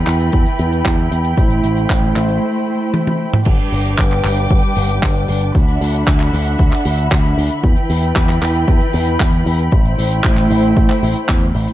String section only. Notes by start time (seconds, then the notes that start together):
Already playing: E3 E4 B4 G5 B5
1.38 A3 C5
3.46 G3 D4 B4 G5 D6
5.55 D3 E5 F#5 B5
7.64 E3 E4 B4 G5
9.72 A3 E4 C5 G5